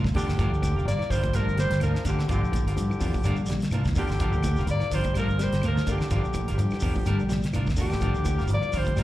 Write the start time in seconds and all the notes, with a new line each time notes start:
0.04 E2, muted clean electric guitar stroke, kick, snare, high conga, shekere
0.14 D3 D4 F4 G4 A#4, kick, snare, open hi-hat, low conga, shekere
0.27 G1, muted clean electric guitar stroke, snare, high conga, claves, shekere
0.37 G1 F3 D4 F4 A#4, kick, snare, closed hi-hat, shekere
0.50 D2, muted clean electric guitar stroke, shekere
0.62 E3, muted clean electric guitar stroke, kick, snare, closed hi-hat, high conga, claves, shekere
0.75 F1 F4 A#4
0.79 shekere
0.85 G1 G3 A#3 D5, muted clean electric guitar stroke, snare, closed hi-hat, shekere
0.99 E3, snare, claves, shekere
1.10 G1 F3 G3 D4 F4 A#4 C5, kick, open hi-hat, low conga, shekere
1.24 F3, muted clean electric guitar stroke, kick, closed hi-hat, high conga, shekere
1.33 A#1 F3 G3 D4 F4 A#4, closed hi-hat, claves, shekere
1.47 G1, muted clean electric guitar stroke, shekere
1.56 G3 C5, muted clean electric guitar stroke, snare, closed hi-hat, high conga, shekere
1.70 G1, snare, closed hi-hat, shekere
1.80 D2 E3 F3 D4 F4 A#4, closed hi-hat, high conga, claves, shekere
1.95 muted clean electric guitar stroke, snare, shekere
2.04 G1 D3 D4 F4 A#4, kick, snare, closed hi-hat, high conga, low conga, shekere
2.08 G4
2.19 muted clean electric guitar stroke, snare, high conga, claves, shekere
2.28 G1 D3 F3 D4 F4 G4, muted clean electric guitar stroke, kick, closed hi-hat, shekere
2.43 A#1, muted clean electric guitar stroke, shekere
2.52 E3, muted clean electric guitar stroke, kick, snare, closed hi-hat, high conga, claves, shekere
2.64 G1 D3 F4 G4 A#4, closed hi-hat, shekere
2.69 snare
2.76 G2 F3, muted clean electric guitar stroke, closed hi-hat, shekere
2.90 E3, claves, shekere
3.00 E2 F3 D4 F4 A#4, kick, open hi-hat, low conga, shekere
3.13 F3, muted fingered electric bass stroke, muted clean electric guitar stroke, kick, high conga, shekere
3.23 G1 G3 D4 F4 A#4, closed hi-hat, claves, shekere
3.36 A#1, muted clean electric guitar stroke, shekere
3.46 G3, muted clean electric guitar stroke, closed hi-hat, high conga, shekere
3.50 snare
3.60 snare, closed hi-hat, high conga, shekere
3.71 C2 E3 D4 F4 A#4, closed hi-hat, high conga, claves, shekere
3.84 E2, muted clean electric guitar stroke, kick, snare, high conga, shekere
3.95 D3 D4 F4 G4 A#4, kick, snare, open hi-hat, high conga, low conga, shekere
4.08 G1, muted clean electric guitar stroke, snare, claves, shekere
4.19 G1 F3 D4 F4 A#4, kick, closed hi-hat, shekere
4.33 D2, muted clean electric guitar stroke, shekere
4.43 E3, muted clean electric guitar stroke, kick, snare, closed hi-hat, high conga, claves, shekere
4.56 F1 F4 A#4, snare, shekere
4.67 G1 A#3 D5, muted clean electric guitar stroke, closed hi-hat, shekere
4.80 E3, snare, claves, shekere
4.91 G1 F3 G3 D4 F4 A#4 C5, kick, open hi-hat, low conga, shekere
5.04 F3, kick, closed hi-hat, high conga, shekere
5.14 A#1 G3 D4 F4 A#4, closed hi-hat, claves, shekere
5.18 F3 A#4
5.28 G1, muted clean electric guitar stroke, low conga, shekere
5.38 G3, muted clean electric guitar stroke, snare, closed hi-hat, high conga, shekere
5.43 C5
5.52 G1, snare, closed hi-hat, shekere
5.62 D2 D4 F4 A#4, muted clean electric guitar stroke, closed hi-hat, high conga, claves, shekere
5.66 F3 A#4
5.77 muted clean electric guitar stroke, snare, high conga, shekere
5.86 G1 D3 D4 F4 A#4, kick, snare, closed hi-hat, low conga, shekere
5.91 G4
5.98 muted clean electric guitar stroke, snare, claves, shekere
6.10 G1 F3 D4 F4 A#4, kick, closed hi-hat, shekere
6.15 D3 G4
6.24 A#1, muted clean electric guitar stroke, shekere
6.34 E3, muted clean electric guitar stroke, kick, closed hi-hat, high conga, claves, shekere
6.48 G1 D3 F4 A#4, snare, closed hi-hat, shekere
6.54 F3 G4, muted clean electric guitar stroke
6.59 G2, closed hi-hat, shekere
6.70 E3, snare, claves, shekere
6.80 E2 F3 D4 F4 A#4, kick, open hi-hat, low conga, shekere
6.95 F3, muted clean electric guitar stroke, muted fingered electric bass stroke, kick, high conga, shekere
7.06 G1 G3 D4 A#4, muted clean electric guitar stroke, closed hi-hat, claves, shekere
7.19 A#1, muted clean electric guitar stroke, shekere
7.29 G3, muted clean electric guitar stroke, snare, closed hi-hat, high conga, shekere
7.42 snare, closed hi-hat, shekere
7.53 C2 E3 D4 F4 A#4, closed hi-hat, high conga, claves, shekere
7.66 E2, muted clean electric guitar stroke, kick, snare, shekere
7.76 D3 D4 F4 A#4, kick, snare, open hi-hat, high conga, low conga, shekere
7.81 G4
7.90 G1, muted clean electric guitar stroke, snare, high conga, claves, shekere
8.01 G1 F3 D4 F4 A#4, kick, closed hi-hat, shekere
8.15 D2, shekere
8.25 E3, muted clean electric guitar stroke, kick, closed hi-hat, high conga, claves, shekere
8.38 F1 F4 A#4, snare, shekere
8.48 G1 F3, muted clean electric guitar stroke, closed hi-hat, shekere
8.52 A#3 D5
8.62 E3, claves, shekere
8.71 G1 F3 D4 F4, kick, open hi-hat, low conga, shekere
8.75 G3 A#4 C5
8.85 F3, muted clean electric guitar stroke, kick, closed hi-hat, high conga, shekere
8.96 A#1 G3 D4 F4 A#4, closed hi-hat, claves, shekere